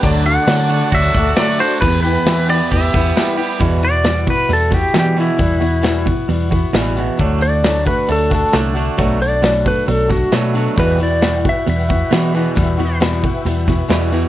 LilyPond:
<<
  \new Staff \with { instrumentName = "Tonewheel organ" } { \time 4/4 \key e \minor \tempo 4 = 134 << { <fis' d'' d'''>1 | <e' b' b''>1 | r1 | r1 |
r1 | r1 | <e' b' g''>1~ | <e' b' g''>1 | } \\ { a''1 | g''1 | r1 | r1 |
r1 | r1 | fis''1 | e''1 | } >> }
  \new Staff \with { instrumentName = "Pedal steel guitar" } { \time 4/4 \key e \minor d''8 fis''4. e''4 d''8 c''8 | b'8 b'4 d''8 e''4. r8 | r8 d''4 b'8 a'8 g'8 g'8 e'8~ | e'4. r2 r8 |
r8 d''4 b'8 a'8 a'8 r4 | r8 d''4 b'8 a'8 fis'8 r4 | b'8 d''4 e''8 e''2~ | e''4 r2. | }
  \new Staff \with { instrumentName = "Steel-string acoustic guitar" } { \time 4/4 \key e \minor <d fis a d' fis'>8 <a d' fis'>8 <d fis a d' fis'>8 <a d' fis'>8 <fis a d' fis'>8 <a d' fis'>8 <d fis a d' fis'>8 <a d' fis'>8 | <e b e' g'>8 <b e' g'>8 <e b e' g'>8 <b e' g'>8 <e b e' g'>8 <b e' g'>8 <e b e' g'>8 <b e' g'>8 | <e g b e' fis'>8 <b e' fis'>8 <e g b e' fis'>8 <b e' fis'>8 <g b e' fis'>8 <b e' fis'>8 <e g b e' fis'>8 <b e' fis'>8 | <e g b e' fis'>8 <b e' fis'>8 <e g b e' fis'>8 <b e' fis'>8 <g b e' fis'>8 <b e' fis'>8 <e g b e' fis'>8 <b e' fis'>8 |
<d fis a d' fis'>8 <a d' fis'>8 <d fis a d' fis'>8 <a d' fis'>8 <fis a d' fis'>8 <a d' fis'>8 <d fis a d' fis'>8 <a d' fis'>8 | <b, fis a d' fis'>8 <a d' fis'>8 <b, fis a d' fis'>8 <a d' fis'>8 <fis a d' fis'>8 <a d' fis'>8 <b, fis a d' fis'>8 <a d' fis'>8 | <e g b e' fis'>8 <b e' fis'>8 <e g b e' fis'>8 <b e' fis'>8 <g b e' fis'>8 <b e' fis'>8 <e g b e' fis'>8 <b e' fis'>8 | <e g b e' fis'>8 <b e' fis'>8 <e g b e' fis'>8 <b e' fis'>8 <g b e' fis'>8 <b e' fis'>8 <e g b e' fis'>8 <b e' fis'>8 | }
  \new Staff \with { instrumentName = "Clean electric guitar" } { \clef bass \time 4/4 \key e \minor d4 d8 d'8 fis'8 d'8 a8 fis'8 | e,4 e8 b8 g'8 b8 g8 g'8 | <e, b, e>8 <e, b,>8 <e, b,>8 <e, b,>8 <e, b,>8 <e, b,>8 <e, b, e>8 <e, b, e>8 | <e, b,>8 <e, b,>8 <e, b,>8 <e, b,>8 <e, b,>8 <e, b,>8 <e, b, e>8 <e, b, e>8 |
<d a d'>8 <d a>8 <d a>8 <d a>8 <d a>8 <d a>8 <d a d'>8 <d a d'>8 | <b, fis a>8 <b, fis>8 <b, fis>8 <b, fis>8 <b, fis>8 <b, fis>8 <b, fis a>8 <b, fis a>8 | <e, b, e>8 <e, b,>8 <e, b,>8 <e, b,>8 <e, b,>8 <e, b,>8 <e, b, e>8 <e, b, e>8 | <e, b,>8 <e, b,>8 <e, b,>8 <e, b,>8 <e, b,>8 <e, b,>8 <e, b, e>8 <e, b, e>8 | }
  \new Staff \with { instrumentName = "Fingered electric bass" } { \clef bass \time 4/4 \key e \minor d,4 d4 d,8 d,8 r4 | e,4 e4 e,8 e,8 r4 | e,2 e,4 e4 | e,2 e,4 a,,4 |
d,2 d,4 c,4 | b,,2 b,,4 b,4 | e,2 e,4 e4 | e,2 e,4 e,4 | }
  \new DrumStaff \with { instrumentName = "Drums" } \drummode { \time 4/4 <cymc bd>8 cymc8 <cymc sn>8 cymc8 <cymc bd>8 <cymc bd sn>8 <cymc sn>8 cymc8 | <cymc bd>8 cymc8 <cymc sn>8 cymc8 <cymc bd>8 <cymc bd sn>8 <cymc sn>8 cymc8 | <hho bd>8 hho8 <hho sn>8 <hho bd>8 hho8 <hho bd sn>8 <hho sn>8 hho8 | <hho bd>8 hho8 <hho sn>8 <hho bd>8 hho8 <hho bd>8 <hho sn>8 hho8 |
<hho bd>8 hho8 <hho sn>8 <hho bd>8 hho8 <hho bd sn>8 <hho sn>8 hho8 | <hho bd>8 hho8 <hho sn>8 <hho bd>8 hho8 <hho bd sn>8 <hho sn>8 hho8 | <hho bd>8 hho8 <hho sn>8 <hho bd>8 hho8 <hho bd>8 <hho sn>8 hho8 | <hho bd>8 hho8 <hho sn>8 <hho bd>8 hho8 <hho bd sn>8 <hho sn>8 hho8 | }
>>